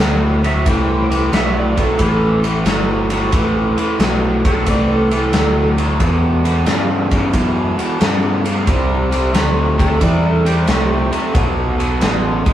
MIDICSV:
0, 0, Header, 1, 6, 480
1, 0, Start_track
1, 0, Tempo, 668151
1, 474, Time_signature, 4, 2, 24, 8
1, 9002, End_track
2, 0, Start_track
2, 0, Title_t, "Electric slide guitar"
2, 0, Program_c, 0, 29
2, 330, Note_on_c, 0, 76, 87
2, 477, Note_off_c, 0, 76, 0
2, 495, Note_on_c, 0, 79, 86
2, 950, Note_off_c, 0, 79, 0
2, 974, Note_on_c, 0, 76, 76
2, 1119, Note_off_c, 0, 76, 0
2, 1139, Note_on_c, 0, 74, 69
2, 1281, Note_off_c, 0, 74, 0
2, 1292, Note_on_c, 0, 69, 76
2, 1438, Note_off_c, 0, 69, 0
2, 1453, Note_on_c, 0, 69, 92
2, 1755, Note_off_c, 0, 69, 0
2, 3213, Note_on_c, 0, 69, 88
2, 3357, Note_off_c, 0, 69, 0
2, 3374, Note_on_c, 0, 74, 88
2, 3518, Note_off_c, 0, 74, 0
2, 3528, Note_on_c, 0, 69, 83
2, 3674, Note_off_c, 0, 69, 0
2, 3695, Note_on_c, 0, 69, 89
2, 4148, Note_off_c, 0, 69, 0
2, 7043, Note_on_c, 0, 69, 86
2, 7193, Note_off_c, 0, 69, 0
2, 7207, Note_on_c, 0, 74, 86
2, 7354, Note_off_c, 0, 74, 0
2, 7372, Note_on_c, 0, 69, 89
2, 7517, Note_off_c, 0, 69, 0
2, 7524, Note_on_c, 0, 67, 86
2, 7983, Note_off_c, 0, 67, 0
2, 9002, End_track
3, 0, Start_track
3, 0, Title_t, "Overdriven electric guitar"
3, 0, Program_c, 1, 29
3, 0, Note_on_c, 1, 45, 84
3, 0, Note_on_c, 1, 54, 83
3, 280, Note_off_c, 1, 45, 0
3, 283, Note_off_c, 1, 54, 0
3, 314, Note_on_c, 1, 45, 69
3, 318, Note_on_c, 1, 54, 79
3, 457, Note_off_c, 1, 45, 0
3, 459, Note_off_c, 1, 54, 0
3, 472, Note_on_c, 1, 45, 88
3, 473, Note_on_c, 1, 52, 83
3, 763, Note_off_c, 1, 45, 0
3, 763, Note_off_c, 1, 52, 0
3, 789, Note_on_c, 1, 45, 68
3, 793, Note_on_c, 1, 52, 75
3, 934, Note_off_c, 1, 45, 0
3, 936, Note_off_c, 1, 52, 0
3, 946, Note_on_c, 1, 45, 84
3, 952, Note_on_c, 1, 54, 96
3, 1239, Note_off_c, 1, 45, 0
3, 1242, Note_off_c, 1, 54, 0
3, 1264, Note_on_c, 1, 45, 66
3, 1267, Note_on_c, 1, 54, 77
3, 1411, Note_off_c, 1, 45, 0
3, 1413, Note_off_c, 1, 54, 0
3, 1422, Note_on_c, 1, 45, 83
3, 1427, Note_on_c, 1, 52, 95
3, 1717, Note_off_c, 1, 45, 0
3, 1720, Note_off_c, 1, 52, 0
3, 1746, Note_on_c, 1, 45, 76
3, 1749, Note_on_c, 1, 52, 85
3, 1892, Note_off_c, 1, 45, 0
3, 1893, Note_off_c, 1, 52, 0
3, 1902, Note_on_c, 1, 45, 84
3, 1905, Note_on_c, 1, 54, 98
3, 2197, Note_off_c, 1, 45, 0
3, 2198, Note_off_c, 1, 54, 0
3, 2229, Note_on_c, 1, 45, 70
3, 2235, Note_on_c, 1, 54, 80
3, 2373, Note_off_c, 1, 45, 0
3, 2376, Note_off_c, 1, 54, 0
3, 2387, Note_on_c, 1, 45, 79
3, 2392, Note_on_c, 1, 52, 87
3, 2679, Note_off_c, 1, 45, 0
3, 2682, Note_off_c, 1, 52, 0
3, 2708, Note_on_c, 1, 45, 74
3, 2713, Note_on_c, 1, 52, 78
3, 2853, Note_off_c, 1, 45, 0
3, 2855, Note_off_c, 1, 52, 0
3, 2868, Note_on_c, 1, 45, 81
3, 2874, Note_on_c, 1, 54, 94
3, 3160, Note_off_c, 1, 45, 0
3, 3162, Note_off_c, 1, 54, 0
3, 3194, Note_on_c, 1, 45, 74
3, 3199, Note_on_c, 1, 54, 70
3, 3335, Note_off_c, 1, 45, 0
3, 3338, Note_off_c, 1, 54, 0
3, 3353, Note_on_c, 1, 45, 78
3, 3357, Note_on_c, 1, 52, 90
3, 3642, Note_off_c, 1, 45, 0
3, 3644, Note_off_c, 1, 52, 0
3, 3676, Note_on_c, 1, 45, 66
3, 3680, Note_on_c, 1, 52, 85
3, 3816, Note_off_c, 1, 45, 0
3, 3818, Note_off_c, 1, 52, 0
3, 3829, Note_on_c, 1, 45, 85
3, 3833, Note_on_c, 1, 54, 98
3, 4120, Note_off_c, 1, 45, 0
3, 4122, Note_off_c, 1, 54, 0
3, 4150, Note_on_c, 1, 45, 77
3, 4153, Note_on_c, 1, 54, 84
3, 4293, Note_off_c, 1, 45, 0
3, 4295, Note_off_c, 1, 54, 0
3, 4307, Note_on_c, 1, 40, 77
3, 4312, Note_on_c, 1, 47, 91
3, 4599, Note_off_c, 1, 40, 0
3, 4601, Note_off_c, 1, 47, 0
3, 4628, Note_on_c, 1, 40, 67
3, 4630, Note_on_c, 1, 47, 86
3, 4772, Note_off_c, 1, 40, 0
3, 4773, Note_off_c, 1, 47, 0
3, 4785, Note_on_c, 1, 40, 81
3, 4788, Note_on_c, 1, 49, 91
3, 5078, Note_off_c, 1, 40, 0
3, 5079, Note_off_c, 1, 49, 0
3, 5105, Note_on_c, 1, 40, 72
3, 5110, Note_on_c, 1, 49, 82
3, 5251, Note_off_c, 1, 40, 0
3, 5253, Note_off_c, 1, 49, 0
3, 5265, Note_on_c, 1, 40, 75
3, 5268, Note_on_c, 1, 47, 98
3, 5558, Note_off_c, 1, 40, 0
3, 5560, Note_off_c, 1, 47, 0
3, 5584, Note_on_c, 1, 40, 74
3, 5585, Note_on_c, 1, 47, 82
3, 5730, Note_off_c, 1, 40, 0
3, 5731, Note_off_c, 1, 47, 0
3, 5742, Note_on_c, 1, 40, 72
3, 5746, Note_on_c, 1, 49, 101
3, 6037, Note_off_c, 1, 40, 0
3, 6039, Note_off_c, 1, 49, 0
3, 6069, Note_on_c, 1, 40, 70
3, 6070, Note_on_c, 1, 49, 80
3, 6213, Note_off_c, 1, 40, 0
3, 6214, Note_off_c, 1, 49, 0
3, 6221, Note_on_c, 1, 48, 70
3, 6227, Note_on_c, 1, 55, 89
3, 6516, Note_off_c, 1, 48, 0
3, 6519, Note_off_c, 1, 55, 0
3, 6542, Note_on_c, 1, 48, 62
3, 6549, Note_on_c, 1, 55, 77
3, 6690, Note_off_c, 1, 48, 0
3, 6693, Note_off_c, 1, 55, 0
3, 6699, Note_on_c, 1, 48, 81
3, 6704, Note_on_c, 1, 57, 94
3, 6995, Note_off_c, 1, 48, 0
3, 6998, Note_off_c, 1, 57, 0
3, 7024, Note_on_c, 1, 48, 74
3, 7025, Note_on_c, 1, 57, 71
3, 7167, Note_off_c, 1, 48, 0
3, 7171, Note_off_c, 1, 57, 0
3, 7176, Note_on_c, 1, 48, 85
3, 7180, Note_on_c, 1, 55, 87
3, 7474, Note_off_c, 1, 48, 0
3, 7476, Note_off_c, 1, 55, 0
3, 7507, Note_on_c, 1, 48, 71
3, 7510, Note_on_c, 1, 55, 83
3, 7652, Note_off_c, 1, 48, 0
3, 7653, Note_off_c, 1, 55, 0
3, 7662, Note_on_c, 1, 48, 83
3, 7666, Note_on_c, 1, 57, 93
3, 7957, Note_off_c, 1, 48, 0
3, 7959, Note_off_c, 1, 57, 0
3, 7986, Note_on_c, 1, 48, 72
3, 7989, Note_on_c, 1, 57, 74
3, 8132, Note_off_c, 1, 48, 0
3, 8133, Note_off_c, 1, 57, 0
3, 8141, Note_on_c, 1, 47, 72
3, 8147, Note_on_c, 1, 54, 84
3, 8437, Note_off_c, 1, 47, 0
3, 8439, Note_off_c, 1, 54, 0
3, 8465, Note_on_c, 1, 47, 67
3, 8467, Note_on_c, 1, 54, 72
3, 8611, Note_off_c, 1, 47, 0
3, 8612, Note_off_c, 1, 54, 0
3, 8622, Note_on_c, 1, 47, 79
3, 8627, Note_on_c, 1, 56, 93
3, 8917, Note_off_c, 1, 47, 0
3, 8919, Note_off_c, 1, 56, 0
3, 8946, Note_on_c, 1, 47, 66
3, 8952, Note_on_c, 1, 56, 74
3, 9002, Note_off_c, 1, 47, 0
3, 9002, Note_off_c, 1, 56, 0
3, 9002, End_track
4, 0, Start_track
4, 0, Title_t, "Picked electric bass"
4, 0, Program_c, 2, 34
4, 0, Note_on_c, 2, 38, 86
4, 459, Note_off_c, 2, 38, 0
4, 475, Note_on_c, 2, 36, 94
4, 939, Note_off_c, 2, 36, 0
4, 951, Note_on_c, 2, 35, 84
4, 1417, Note_off_c, 2, 35, 0
4, 1433, Note_on_c, 2, 33, 73
4, 1898, Note_off_c, 2, 33, 0
4, 1906, Note_on_c, 2, 31, 95
4, 2374, Note_off_c, 2, 31, 0
4, 2391, Note_on_c, 2, 33, 80
4, 2691, Note_off_c, 2, 33, 0
4, 2866, Note_on_c, 2, 35, 91
4, 3334, Note_off_c, 2, 35, 0
4, 3353, Note_on_c, 2, 36, 76
4, 3817, Note_off_c, 2, 36, 0
4, 3826, Note_on_c, 2, 38, 85
4, 4294, Note_off_c, 2, 38, 0
4, 4314, Note_on_c, 2, 40, 87
4, 4778, Note_off_c, 2, 40, 0
4, 4792, Note_on_c, 2, 43, 84
4, 5257, Note_off_c, 2, 43, 0
4, 5272, Note_on_c, 2, 42, 76
4, 5571, Note_off_c, 2, 42, 0
4, 5758, Note_on_c, 2, 43, 87
4, 6220, Note_off_c, 2, 43, 0
4, 6235, Note_on_c, 2, 36, 92
4, 6699, Note_off_c, 2, 36, 0
4, 6709, Note_on_c, 2, 38, 89
4, 7176, Note_off_c, 2, 38, 0
4, 7193, Note_on_c, 2, 40, 76
4, 7658, Note_off_c, 2, 40, 0
4, 7675, Note_on_c, 2, 36, 89
4, 7973, Note_off_c, 2, 36, 0
4, 8151, Note_on_c, 2, 35, 88
4, 8617, Note_off_c, 2, 35, 0
4, 8637, Note_on_c, 2, 33, 86
4, 8934, Note_off_c, 2, 33, 0
4, 9002, End_track
5, 0, Start_track
5, 0, Title_t, "Muted picked electric bass strokes"
5, 2714, Note_on_c, 9, 29, 39
5, 2786, Note_off_c, 9, 29, 0
5, 5599, Note_on_c, 9, 29, 41
5, 5671, Note_off_c, 9, 29, 0
5, 8000, Note_on_c, 9, 29, 42
5, 8072, Note_off_c, 9, 29, 0
5, 8952, Note_on_c, 9, 29, 39
5, 9002, Note_off_c, 9, 29, 0
5, 9002, End_track
6, 0, Start_track
6, 0, Title_t, "Drums"
6, 0, Note_on_c, 9, 38, 110
6, 70, Note_off_c, 9, 38, 0
6, 317, Note_on_c, 9, 51, 64
6, 389, Note_off_c, 9, 51, 0
6, 473, Note_on_c, 9, 51, 87
6, 475, Note_on_c, 9, 36, 96
6, 545, Note_off_c, 9, 51, 0
6, 547, Note_off_c, 9, 36, 0
6, 801, Note_on_c, 9, 51, 68
6, 873, Note_off_c, 9, 51, 0
6, 955, Note_on_c, 9, 51, 77
6, 963, Note_on_c, 9, 38, 95
6, 1027, Note_off_c, 9, 51, 0
6, 1034, Note_off_c, 9, 38, 0
6, 1275, Note_on_c, 9, 51, 70
6, 1276, Note_on_c, 9, 36, 83
6, 1346, Note_off_c, 9, 51, 0
6, 1348, Note_off_c, 9, 36, 0
6, 1429, Note_on_c, 9, 51, 79
6, 1433, Note_on_c, 9, 36, 75
6, 1501, Note_off_c, 9, 51, 0
6, 1505, Note_off_c, 9, 36, 0
6, 1751, Note_on_c, 9, 51, 65
6, 1823, Note_off_c, 9, 51, 0
6, 1908, Note_on_c, 9, 51, 84
6, 1915, Note_on_c, 9, 38, 103
6, 1980, Note_off_c, 9, 51, 0
6, 1987, Note_off_c, 9, 38, 0
6, 2227, Note_on_c, 9, 51, 75
6, 2299, Note_off_c, 9, 51, 0
6, 2388, Note_on_c, 9, 51, 93
6, 2392, Note_on_c, 9, 36, 107
6, 2460, Note_off_c, 9, 51, 0
6, 2464, Note_off_c, 9, 36, 0
6, 2713, Note_on_c, 9, 51, 63
6, 2785, Note_off_c, 9, 51, 0
6, 2871, Note_on_c, 9, 51, 79
6, 2878, Note_on_c, 9, 38, 96
6, 2943, Note_off_c, 9, 51, 0
6, 2950, Note_off_c, 9, 38, 0
6, 3195, Note_on_c, 9, 51, 71
6, 3196, Note_on_c, 9, 36, 88
6, 3267, Note_off_c, 9, 51, 0
6, 3268, Note_off_c, 9, 36, 0
6, 3350, Note_on_c, 9, 51, 86
6, 3353, Note_on_c, 9, 36, 81
6, 3422, Note_off_c, 9, 51, 0
6, 3425, Note_off_c, 9, 36, 0
6, 3674, Note_on_c, 9, 51, 65
6, 3745, Note_off_c, 9, 51, 0
6, 3828, Note_on_c, 9, 51, 86
6, 3836, Note_on_c, 9, 38, 105
6, 3900, Note_off_c, 9, 51, 0
6, 3908, Note_off_c, 9, 38, 0
6, 4154, Note_on_c, 9, 51, 72
6, 4225, Note_off_c, 9, 51, 0
6, 4310, Note_on_c, 9, 51, 82
6, 4312, Note_on_c, 9, 36, 105
6, 4382, Note_off_c, 9, 51, 0
6, 4384, Note_off_c, 9, 36, 0
6, 4635, Note_on_c, 9, 51, 65
6, 4706, Note_off_c, 9, 51, 0
6, 4787, Note_on_c, 9, 51, 76
6, 4794, Note_on_c, 9, 38, 94
6, 4859, Note_off_c, 9, 51, 0
6, 4866, Note_off_c, 9, 38, 0
6, 5110, Note_on_c, 9, 51, 67
6, 5113, Note_on_c, 9, 36, 84
6, 5182, Note_off_c, 9, 51, 0
6, 5185, Note_off_c, 9, 36, 0
6, 5269, Note_on_c, 9, 51, 77
6, 5270, Note_on_c, 9, 36, 75
6, 5341, Note_off_c, 9, 51, 0
6, 5342, Note_off_c, 9, 36, 0
6, 5595, Note_on_c, 9, 51, 66
6, 5666, Note_off_c, 9, 51, 0
6, 5751, Note_on_c, 9, 51, 80
6, 5758, Note_on_c, 9, 38, 100
6, 5823, Note_off_c, 9, 51, 0
6, 5830, Note_off_c, 9, 38, 0
6, 6074, Note_on_c, 9, 51, 74
6, 6145, Note_off_c, 9, 51, 0
6, 6230, Note_on_c, 9, 51, 92
6, 6232, Note_on_c, 9, 36, 95
6, 6302, Note_off_c, 9, 51, 0
6, 6303, Note_off_c, 9, 36, 0
6, 6554, Note_on_c, 9, 51, 66
6, 6626, Note_off_c, 9, 51, 0
6, 6713, Note_on_c, 9, 51, 94
6, 6720, Note_on_c, 9, 38, 93
6, 6785, Note_off_c, 9, 51, 0
6, 6792, Note_off_c, 9, 38, 0
6, 7036, Note_on_c, 9, 36, 83
6, 7039, Note_on_c, 9, 51, 66
6, 7108, Note_off_c, 9, 36, 0
6, 7111, Note_off_c, 9, 51, 0
6, 7190, Note_on_c, 9, 51, 88
6, 7192, Note_on_c, 9, 36, 76
6, 7262, Note_off_c, 9, 51, 0
6, 7264, Note_off_c, 9, 36, 0
6, 7516, Note_on_c, 9, 51, 64
6, 7588, Note_off_c, 9, 51, 0
6, 7669, Note_on_c, 9, 51, 87
6, 7677, Note_on_c, 9, 38, 95
6, 7741, Note_off_c, 9, 51, 0
6, 7748, Note_off_c, 9, 38, 0
6, 7993, Note_on_c, 9, 51, 65
6, 8064, Note_off_c, 9, 51, 0
6, 8152, Note_on_c, 9, 36, 112
6, 8152, Note_on_c, 9, 51, 83
6, 8224, Note_off_c, 9, 36, 0
6, 8224, Note_off_c, 9, 51, 0
6, 8476, Note_on_c, 9, 51, 60
6, 8548, Note_off_c, 9, 51, 0
6, 8630, Note_on_c, 9, 51, 77
6, 8637, Note_on_c, 9, 38, 94
6, 8702, Note_off_c, 9, 51, 0
6, 8709, Note_off_c, 9, 38, 0
6, 8952, Note_on_c, 9, 51, 59
6, 8954, Note_on_c, 9, 36, 90
6, 9002, Note_off_c, 9, 36, 0
6, 9002, Note_off_c, 9, 51, 0
6, 9002, End_track
0, 0, End_of_file